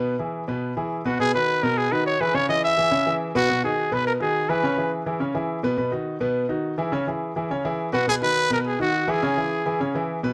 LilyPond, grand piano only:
\new Staff \with { instrumentName = "Grand piano" } { \time 4/4 \key gis \minor \tempo 4 = 209 <b, b b'>8 <e e' gis'>4 <b, b b'>4 <e e' gis'>4 <b, b b'>8 | <b, b b'>8 <dis dis' fis'>4 <b, b b'>4 <dis dis' fis'>4 <e e' gis'>8 | <cis cis' cis''>8 <e e' gis'>4 <e e' gis'>8 <cis cis' cis''>8 <e e' gis'>4 <b, b b'>8 | <b, b>8 <dis dis' fis'>4 <b, b b'>4 <dis dis' fis'>4 <e e' gis'>8 |
<cis cis' cis''>8 <e e' gis'>4 <e e' gis'>8 <cis cis' cis''>8 <e e' gis'>4 <b, b b'>8 | <b, b b'>8 <dis dis' fis'>4 <b, b b'>4 <dis dis' fis'>4 <e e' gis'>8 | <cis cis' cis''>8 <e e' gis'>4 <e e' gis'>8 <cis cis' cis''>8 <e e' gis'>4 <b, b b'>8 | <b, b b'>8 <dis dis' fis'>4 <b, b b'>4 <dis dis' fis'>4 <e e' gis'>8 |
<cis cis' cis''>8 <e e' gis'>4 <e e' gis'>8 <cis cis' cis''>8 <e e' gis'>4 <b, b b'>8 | }